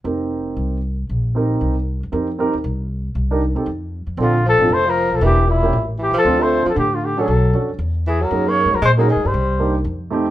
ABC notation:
X:1
M:4/4
L:1/8
Q:"Swing" 1/4=233
K:Fmix
V:1 name="Trumpet"
z8 | z8 | z8 | z8 |
F2 A2 c B2 A | G2 =E3 z G A- | A c2 A G F G A- | A3 z3 ^G B- |
B _d2 B c B _A c- | c3 z4 z |]
V:2 name="Grand piano"
[CEGB]4- [CEGB] z3 | z2 [CEGB]3 z3 | [CEGB] z [CEGB] z4 z | z [DEGB] z [CEGA] z4 |
[CDFA] z2 [CDFA] z4 | [B,D=EG] z2 [B,_DEG] z4 | [CDFA]3 z4 [_D=D_GA] | z2 [_D=D^FA] z4 z |
[B,_DE_A]3 z2 [B,DEA] z2 | z2 [B,DEG] z3 [A,CEG] z |]
V:3 name="Tenor saxophone" clef=bass
z8 | z8 | z8 | z8 |
D,2 F,2 A, F,2 F, | =E,2 B,,3 z E, F,- | F, A,2 F, D, D, D, _G,- | _G,3 z3 =E, ^F,- |
^F, B,2 _G, _A, G, E, =G,- | G,3 z4 z |]
V:4 name="Upright bass" clef=bass
F,,,4 C,,4 | B,,,4 C,,3 =E,, | F,,3 E,, C,,4 | C,,3 C, F,,3 F,, |
B,,,3 A,,, F,,,3 _C,, | =E,,,4 A,,,3 z | D,,3 z A,,4 | =B,,,2 F,,2 =E,,4 |
_G,,2- (3G,, _A,, F,, B,,2- (3B,, A,, =G,, | C,,4 F,,4 |]